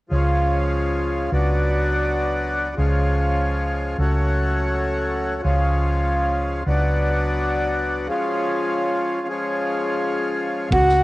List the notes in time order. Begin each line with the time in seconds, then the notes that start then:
0.09 C#2 F3 G#3 C#4 F4
1.30 C#2 F#3 B3 D4 F#4
2.76 C#2 F3 G#3 C#4 F4
3.98 C#2 F#3 A3 C#4 F#4
5.42 C#2 F3 G#3 C#4 F4
6.66 C#2 F#3 B3 D4 F#4
8.07 F3 G#3 C#4 F4
9.27 F3 G#3 C#4
9.31 F4
10.70 C#2 F#4 F#5, kick
10.89 snare